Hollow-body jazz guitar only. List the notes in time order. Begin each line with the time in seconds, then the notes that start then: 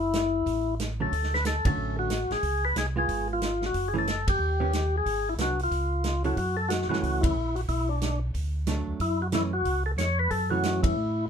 1.00 D3 F#3 A3 C#4
1.66 D3 F#3 A3 C#4
2.96 G#3 B3 F4
3.94 E3 A3 C#4
4.60 D#3 B3 C#4 G4
5.39 F#3 B3 D4
6.24 F#3 C#4 E4 A4
6.90 E3 A3 C#4
8.67 F#3 A3 D4
9.33 E3 A3 C#4
10.51 E3 A3 C#4